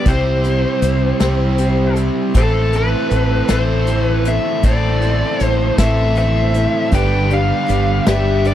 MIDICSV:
0, 0, Header, 1, 8, 480
1, 0, Start_track
1, 0, Tempo, 762195
1, 42, Time_signature, 6, 3, 24, 8
1, 5379, End_track
2, 0, Start_track
2, 0, Title_t, "Lead electric guitar"
2, 0, Program_c, 0, 29
2, 55, Note_on_c, 0, 72, 93
2, 1224, Note_off_c, 0, 72, 0
2, 1498, Note_on_c, 0, 69, 86
2, 1737, Note_off_c, 0, 69, 0
2, 1743, Note_on_c, 0, 71, 93
2, 2219, Note_off_c, 0, 71, 0
2, 2221, Note_on_c, 0, 72, 88
2, 2555, Note_off_c, 0, 72, 0
2, 2555, Note_on_c, 0, 71, 88
2, 2695, Note_on_c, 0, 76, 91
2, 2707, Note_off_c, 0, 71, 0
2, 2931, Note_off_c, 0, 76, 0
2, 2934, Note_on_c, 0, 74, 91
2, 3444, Note_off_c, 0, 74, 0
2, 3444, Note_on_c, 0, 72, 91
2, 3647, Note_off_c, 0, 72, 0
2, 3650, Note_on_c, 0, 76, 84
2, 3887, Note_off_c, 0, 76, 0
2, 3895, Note_on_c, 0, 76, 104
2, 4345, Note_off_c, 0, 76, 0
2, 4376, Note_on_c, 0, 79, 103
2, 4617, Note_off_c, 0, 79, 0
2, 4620, Note_on_c, 0, 77, 92
2, 5067, Note_off_c, 0, 77, 0
2, 5087, Note_on_c, 0, 76, 85
2, 5334, Note_off_c, 0, 76, 0
2, 5336, Note_on_c, 0, 74, 95
2, 5379, Note_off_c, 0, 74, 0
2, 5379, End_track
3, 0, Start_track
3, 0, Title_t, "Grand piano"
3, 0, Program_c, 1, 0
3, 4360, Note_on_c, 1, 62, 77
3, 4362, Note_on_c, 1, 67, 69
3, 4362, Note_on_c, 1, 71, 88
3, 4554, Note_off_c, 1, 62, 0
3, 4555, Note_off_c, 1, 67, 0
3, 4556, Note_off_c, 1, 71, 0
3, 4604, Note_on_c, 1, 62, 60
3, 4610, Note_on_c, 1, 67, 57
3, 4612, Note_on_c, 1, 74, 69
3, 4796, Note_off_c, 1, 62, 0
3, 4800, Note_off_c, 1, 67, 0
3, 4801, Note_off_c, 1, 74, 0
3, 4837, Note_on_c, 1, 62, 68
3, 4840, Note_on_c, 1, 67, 58
3, 4842, Note_on_c, 1, 71, 67
3, 5225, Note_off_c, 1, 62, 0
3, 5226, Note_off_c, 1, 67, 0
3, 5228, Note_off_c, 1, 71, 0
3, 5323, Note_on_c, 1, 62, 60
3, 5326, Note_on_c, 1, 67, 52
3, 5330, Note_on_c, 1, 71, 69
3, 5379, Note_off_c, 1, 62, 0
3, 5379, Note_off_c, 1, 67, 0
3, 5379, Note_off_c, 1, 71, 0
3, 5379, End_track
4, 0, Start_track
4, 0, Title_t, "Overdriven electric guitar"
4, 0, Program_c, 2, 29
4, 67, Note_on_c, 2, 67, 88
4, 749, Note_off_c, 2, 67, 0
4, 757, Note_on_c, 2, 67, 76
4, 1466, Note_off_c, 2, 67, 0
4, 1500, Note_on_c, 2, 69, 116
4, 2198, Note_off_c, 2, 69, 0
4, 2200, Note_on_c, 2, 69, 78
4, 2908, Note_off_c, 2, 69, 0
4, 2944, Note_on_c, 2, 69, 114
4, 3633, Note_off_c, 2, 69, 0
4, 3640, Note_on_c, 2, 69, 85
4, 4348, Note_off_c, 2, 69, 0
4, 4363, Note_on_c, 2, 43, 88
4, 4369, Note_on_c, 2, 50, 104
4, 4379, Note_on_c, 2, 59, 100
4, 4383, Note_on_c, 2, 62, 100
4, 4386, Note_on_c, 2, 67, 102
4, 5070, Note_off_c, 2, 43, 0
4, 5073, Note_off_c, 2, 50, 0
4, 5078, Note_off_c, 2, 59, 0
4, 5080, Note_off_c, 2, 62, 0
4, 5080, Note_off_c, 2, 67, 0
4, 5093, Note_on_c, 2, 59, 80
4, 5103, Note_on_c, 2, 50, 69
4, 5108, Note_on_c, 2, 43, 75
4, 5379, Note_off_c, 2, 43, 0
4, 5379, Note_off_c, 2, 50, 0
4, 5379, Note_off_c, 2, 59, 0
4, 5379, End_track
5, 0, Start_track
5, 0, Title_t, "Tonewheel organ"
5, 0, Program_c, 3, 16
5, 4371, Note_on_c, 3, 71, 66
5, 4372, Note_on_c, 3, 67, 67
5, 4376, Note_on_c, 3, 59, 65
5, 4376, Note_on_c, 3, 62, 63
5, 5379, Note_off_c, 3, 59, 0
5, 5379, Note_off_c, 3, 62, 0
5, 5379, Note_off_c, 3, 67, 0
5, 5379, Note_off_c, 3, 71, 0
5, 5379, End_track
6, 0, Start_track
6, 0, Title_t, "Twelve-string acoustic guitar"
6, 0, Program_c, 4, 25
6, 38, Note_on_c, 4, 52, 69
6, 41, Note_on_c, 4, 48, 79
6, 42, Note_on_c, 4, 55, 80
6, 43, Note_on_c, 4, 60, 70
6, 45, Note_on_c, 4, 64, 72
6, 46, Note_on_c, 4, 72, 85
6, 269, Note_off_c, 4, 72, 0
6, 277, Note_on_c, 4, 72, 50
6, 278, Note_off_c, 4, 64, 0
6, 280, Note_off_c, 4, 52, 0
6, 282, Note_off_c, 4, 48, 0
6, 282, Note_off_c, 4, 55, 0
6, 282, Note_off_c, 4, 60, 0
6, 286, Note_on_c, 4, 64, 55
6, 289, Note_on_c, 4, 60, 44
6, 292, Note_on_c, 4, 55, 42
6, 508, Note_off_c, 4, 55, 0
6, 513, Note_off_c, 4, 60, 0
6, 516, Note_on_c, 4, 55, 69
6, 517, Note_off_c, 4, 64, 0
6, 519, Note_off_c, 4, 72, 0
6, 520, Note_on_c, 4, 60, 64
6, 524, Note_on_c, 4, 64, 63
6, 530, Note_on_c, 4, 72, 64
6, 747, Note_off_c, 4, 72, 0
6, 749, Note_off_c, 4, 64, 0
6, 751, Note_off_c, 4, 60, 0
6, 754, Note_off_c, 4, 55, 0
6, 754, Note_on_c, 4, 72, 74
6, 757, Note_on_c, 4, 64, 68
6, 759, Note_on_c, 4, 60, 70
6, 762, Note_on_c, 4, 55, 61
6, 767, Note_on_c, 4, 52, 54
6, 768, Note_on_c, 4, 48, 58
6, 988, Note_off_c, 4, 55, 0
6, 994, Note_off_c, 4, 60, 0
6, 996, Note_on_c, 4, 55, 61
6, 998, Note_off_c, 4, 64, 0
6, 999, Note_off_c, 4, 72, 0
6, 1002, Note_on_c, 4, 60, 71
6, 1005, Note_off_c, 4, 48, 0
6, 1005, Note_off_c, 4, 52, 0
6, 1005, Note_on_c, 4, 64, 67
6, 1010, Note_on_c, 4, 72, 70
6, 1225, Note_off_c, 4, 72, 0
6, 1228, Note_off_c, 4, 64, 0
6, 1233, Note_off_c, 4, 60, 0
6, 1233, Note_on_c, 4, 72, 55
6, 1235, Note_on_c, 4, 64, 49
6, 1239, Note_off_c, 4, 55, 0
6, 1240, Note_on_c, 4, 60, 47
6, 1246, Note_on_c, 4, 55, 47
6, 1474, Note_off_c, 4, 60, 0
6, 1476, Note_on_c, 4, 45, 68
6, 1478, Note_off_c, 4, 72, 0
6, 1479, Note_off_c, 4, 55, 0
6, 1479, Note_off_c, 4, 64, 0
6, 1480, Note_on_c, 4, 52, 77
6, 1481, Note_on_c, 4, 60, 77
6, 1482, Note_on_c, 4, 57, 73
6, 1487, Note_on_c, 4, 64, 72
6, 1487, Note_on_c, 4, 72, 77
6, 1715, Note_off_c, 4, 64, 0
6, 1719, Note_off_c, 4, 45, 0
6, 1720, Note_off_c, 4, 57, 0
6, 1720, Note_off_c, 4, 60, 0
6, 1721, Note_off_c, 4, 52, 0
6, 1723, Note_on_c, 4, 64, 47
6, 1725, Note_off_c, 4, 72, 0
6, 1727, Note_on_c, 4, 60, 46
6, 1728, Note_on_c, 4, 57, 45
6, 1948, Note_off_c, 4, 57, 0
6, 1955, Note_off_c, 4, 60, 0
6, 1956, Note_on_c, 4, 57, 65
6, 1959, Note_off_c, 4, 64, 0
6, 1963, Note_on_c, 4, 60, 66
6, 1966, Note_on_c, 4, 64, 61
6, 2186, Note_off_c, 4, 64, 0
6, 2187, Note_off_c, 4, 60, 0
6, 2191, Note_off_c, 4, 57, 0
6, 2193, Note_on_c, 4, 72, 72
6, 2194, Note_on_c, 4, 64, 65
6, 2195, Note_on_c, 4, 60, 69
6, 2199, Note_on_c, 4, 45, 56
6, 2199, Note_on_c, 4, 57, 57
6, 2200, Note_on_c, 4, 52, 65
6, 2428, Note_off_c, 4, 57, 0
6, 2431, Note_off_c, 4, 60, 0
6, 2436, Note_on_c, 4, 57, 64
6, 2438, Note_off_c, 4, 72, 0
6, 2438, Note_on_c, 4, 60, 53
6, 2439, Note_off_c, 4, 64, 0
6, 2442, Note_off_c, 4, 45, 0
6, 2442, Note_off_c, 4, 52, 0
6, 2445, Note_on_c, 4, 64, 67
6, 2449, Note_on_c, 4, 72, 57
6, 2671, Note_off_c, 4, 72, 0
6, 2676, Note_off_c, 4, 64, 0
6, 2679, Note_on_c, 4, 72, 50
6, 2680, Note_off_c, 4, 57, 0
6, 2681, Note_off_c, 4, 60, 0
6, 2683, Note_on_c, 4, 64, 47
6, 2689, Note_on_c, 4, 60, 46
6, 2693, Note_on_c, 4, 57, 42
6, 2917, Note_off_c, 4, 57, 0
6, 2920, Note_on_c, 4, 45, 84
6, 2921, Note_off_c, 4, 60, 0
6, 2922, Note_off_c, 4, 72, 0
6, 2922, Note_on_c, 4, 52, 68
6, 2924, Note_off_c, 4, 64, 0
6, 2924, Note_on_c, 4, 57, 73
6, 2928, Note_on_c, 4, 60, 76
6, 2930, Note_on_c, 4, 72, 76
6, 2931, Note_on_c, 4, 64, 73
6, 3151, Note_off_c, 4, 72, 0
6, 3158, Note_on_c, 4, 72, 48
6, 3160, Note_off_c, 4, 64, 0
6, 3162, Note_off_c, 4, 45, 0
6, 3163, Note_off_c, 4, 52, 0
6, 3163, Note_off_c, 4, 60, 0
6, 3164, Note_off_c, 4, 57, 0
6, 3167, Note_on_c, 4, 64, 53
6, 3171, Note_on_c, 4, 60, 46
6, 3173, Note_on_c, 4, 57, 46
6, 3389, Note_off_c, 4, 57, 0
6, 3397, Note_on_c, 4, 57, 53
6, 3398, Note_off_c, 4, 60, 0
6, 3400, Note_off_c, 4, 64, 0
6, 3401, Note_off_c, 4, 72, 0
6, 3405, Note_on_c, 4, 60, 59
6, 3407, Note_on_c, 4, 64, 69
6, 3411, Note_on_c, 4, 72, 64
6, 3641, Note_off_c, 4, 57, 0
6, 3641, Note_off_c, 4, 72, 0
6, 3644, Note_off_c, 4, 64, 0
6, 3645, Note_off_c, 4, 60, 0
6, 3649, Note_on_c, 4, 72, 62
6, 3651, Note_on_c, 4, 57, 54
6, 3651, Note_on_c, 4, 64, 60
6, 3653, Note_on_c, 4, 60, 56
6, 3655, Note_on_c, 4, 52, 58
6, 3656, Note_on_c, 4, 45, 51
6, 3867, Note_off_c, 4, 57, 0
6, 3875, Note_on_c, 4, 57, 55
6, 3878, Note_off_c, 4, 60, 0
6, 3884, Note_off_c, 4, 64, 0
6, 3885, Note_off_c, 4, 72, 0
6, 3885, Note_on_c, 4, 60, 55
6, 3890, Note_off_c, 4, 45, 0
6, 3890, Note_off_c, 4, 52, 0
6, 3891, Note_on_c, 4, 64, 60
6, 3893, Note_on_c, 4, 72, 66
6, 4114, Note_off_c, 4, 72, 0
6, 4120, Note_off_c, 4, 57, 0
6, 4120, Note_off_c, 4, 64, 0
6, 4121, Note_on_c, 4, 72, 50
6, 4125, Note_off_c, 4, 60, 0
6, 4128, Note_on_c, 4, 64, 43
6, 4132, Note_on_c, 4, 60, 42
6, 4137, Note_on_c, 4, 57, 38
6, 4352, Note_off_c, 4, 60, 0
6, 4353, Note_off_c, 4, 57, 0
6, 4355, Note_on_c, 4, 62, 78
6, 4356, Note_off_c, 4, 64, 0
6, 4356, Note_on_c, 4, 55, 69
6, 4358, Note_on_c, 4, 67, 74
6, 4363, Note_off_c, 4, 72, 0
6, 4365, Note_on_c, 4, 71, 87
6, 4590, Note_off_c, 4, 71, 0
6, 4595, Note_off_c, 4, 67, 0
6, 4597, Note_on_c, 4, 71, 44
6, 4600, Note_off_c, 4, 62, 0
6, 4601, Note_off_c, 4, 55, 0
6, 4602, Note_on_c, 4, 67, 48
6, 4607, Note_on_c, 4, 62, 40
6, 4827, Note_on_c, 4, 55, 61
6, 4828, Note_off_c, 4, 62, 0
6, 4832, Note_off_c, 4, 67, 0
6, 4835, Note_off_c, 4, 71, 0
6, 4836, Note_on_c, 4, 62, 60
6, 4840, Note_on_c, 4, 67, 66
6, 4843, Note_on_c, 4, 71, 66
6, 5071, Note_off_c, 4, 71, 0
6, 5074, Note_off_c, 4, 67, 0
6, 5076, Note_off_c, 4, 55, 0
6, 5077, Note_off_c, 4, 62, 0
6, 5079, Note_on_c, 4, 71, 61
6, 5082, Note_on_c, 4, 67, 58
6, 5084, Note_on_c, 4, 62, 56
6, 5088, Note_on_c, 4, 55, 53
6, 5312, Note_off_c, 4, 55, 0
6, 5316, Note_off_c, 4, 62, 0
6, 5318, Note_off_c, 4, 67, 0
6, 5319, Note_on_c, 4, 55, 64
6, 5322, Note_off_c, 4, 71, 0
6, 5323, Note_on_c, 4, 62, 61
6, 5325, Note_on_c, 4, 67, 61
6, 5333, Note_on_c, 4, 71, 59
6, 5379, Note_off_c, 4, 55, 0
6, 5379, Note_off_c, 4, 62, 0
6, 5379, Note_off_c, 4, 67, 0
6, 5379, Note_off_c, 4, 71, 0
6, 5379, End_track
7, 0, Start_track
7, 0, Title_t, "Fretless electric bass"
7, 0, Program_c, 5, 35
7, 37, Note_on_c, 5, 36, 87
7, 408, Note_off_c, 5, 36, 0
7, 517, Note_on_c, 5, 36, 87
7, 703, Note_off_c, 5, 36, 0
7, 761, Note_on_c, 5, 36, 85
7, 1315, Note_off_c, 5, 36, 0
7, 1480, Note_on_c, 5, 33, 96
7, 1850, Note_off_c, 5, 33, 0
7, 1960, Note_on_c, 5, 33, 87
7, 2146, Note_off_c, 5, 33, 0
7, 2203, Note_on_c, 5, 33, 86
7, 2757, Note_off_c, 5, 33, 0
7, 2918, Note_on_c, 5, 33, 91
7, 3289, Note_off_c, 5, 33, 0
7, 3406, Note_on_c, 5, 33, 94
7, 3590, Note_off_c, 5, 33, 0
7, 3641, Note_on_c, 5, 33, 75
7, 4195, Note_off_c, 5, 33, 0
7, 4361, Note_on_c, 5, 31, 90
7, 4732, Note_off_c, 5, 31, 0
7, 4848, Note_on_c, 5, 31, 95
7, 5031, Note_off_c, 5, 31, 0
7, 5082, Note_on_c, 5, 31, 78
7, 5379, Note_off_c, 5, 31, 0
7, 5379, End_track
8, 0, Start_track
8, 0, Title_t, "Drums"
8, 36, Note_on_c, 9, 42, 75
8, 38, Note_on_c, 9, 36, 99
8, 99, Note_off_c, 9, 42, 0
8, 101, Note_off_c, 9, 36, 0
8, 278, Note_on_c, 9, 42, 56
8, 341, Note_off_c, 9, 42, 0
8, 517, Note_on_c, 9, 42, 72
8, 580, Note_off_c, 9, 42, 0
8, 758, Note_on_c, 9, 38, 106
8, 758, Note_on_c, 9, 42, 87
8, 821, Note_off_c, 9, 38, 0
8, 821, Note_off_c, 9, 42, 0
8, 995, Note_on_c, 9, 42, 72
8, 1058, Note_off_c, 9, 42, 0
8, 1237, Note_on_c, 9, 42, 66
8, 1300, Note_off_c, 9, 42, 0
8, 1479, Note_on_c, 9, 36, 100
8, 1479, Note_on_c, 9, 42, 79
8, 1542, Note_off_c, 9, 36, 0
8, 1542, Note_off_c, 9, 42, 0
8, 1718, Note_on_c, 9, 42, 54
8, 1781, Note_off_c, 9, 42, 0
8, 1959, Note_on_c, 9, 42, 67
8, 2022, Note_off_c, 9, 42, 0
8, 2196, Note_on_c, 9, 42, 88
8, 2197, Note_on_c, 9, 38, 103
8, 2259, Note_off_c, 9, 42, 0
8, 2260, Note_off_c, 9, 38, 0
8, 2437, Note_on_c, 9, 42, 65
8, 2500, Note_off_c, 9, 42, 0
8, 2677, Note_on_c, 9, 42, 60
8, 2740, Note_off_c, 9, 42, 0
8, 2916, Note_on_c, 9, 42, 75
8, 2919, Note_on_c, 9, 36, 94
8, 2979, Note_off_c, 9, 42, 0
8, 2982, Note_off_c, 9, 36, 0
8, 3160, Note_on_c, 9, 42, 50
8, 3223, Note_off_c, 9, 42, 0
8, 3400, Note_on_c, 9, 42, 63
8, 3463, Note_off_c, 9, 42, 0
8, 3641, Note_on_c, 9, 36, 72
8, 3642, Note_on_c, 9, 42, 82
8, 3643, Note_on_c, 9, 38, 105
8, 3703, Note_off_c, 9, 36, 0
8, 3705, Note_off_c, 9, 42, 0
8, 3706, Note_off_c, 9, 38, 0
8, 3882, Note_on_c, 9, 42, 65
8, 3945, Note_off_c, 9, 42, 0
8, 4120, Note_on_c, 9, 42, 61
8, 4183, Note_off_c, 9, 42, 0
8, 4360, Note_on_c, 9, 36, 99
8, 4360, Note_on_c, 9, 42, 81
8, 4423, Note_off_c, 9, 36, 0
8, 4423, Note_off_c, 9, 42, 0
8, 4602, Note_on_c, 9, 42, 55
8, 4665, Note_off_c, 9, 42, 0
8, 4844, Note_on_c, 9, 42, 65
8, 4907, Note_off_c, 9, 42, 0
8, 5080, Note_on_c, 9, 38, 109
8, 5080, Note_on_c, 9, 42, 89
8, 5143, Note_off_c, 9, 38, 0
8, 5143, Note_off_c, 9, 42, 0
8, 5321, Note_on_c, 9, 42, 67
8, 5379, Note_off_c, 9, 42, 0
8, 5379, End_track
0, 0, End_of_file